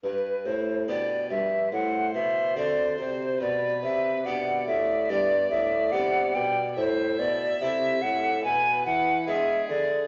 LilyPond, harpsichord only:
<<
  \new Staff \with { instrumentName = "Harpsichord" } { \time 4/4 \key g \major \tempo 4 = 71 r4 <b d' g'>4 r4 <c' fis'>4 | r4 <b d' g'>4 <b d' g'>4 <b d' g'>4 | r4 <c' e' a'>4 r4 <b d' gis'>4 | }
  \new Staff \with { instrumentName = "Harpsichord" } { \clef bass \time 4/4 \key g \major g,8 a,8 b,8 g,8 a,8 b,8 d8 c8 | b,8 c8 b,8 a,8 g,8 a,8 c8 b,8 | a,8 b,8 c8 a,8 b,8 e8 gis8 d8 | }
>>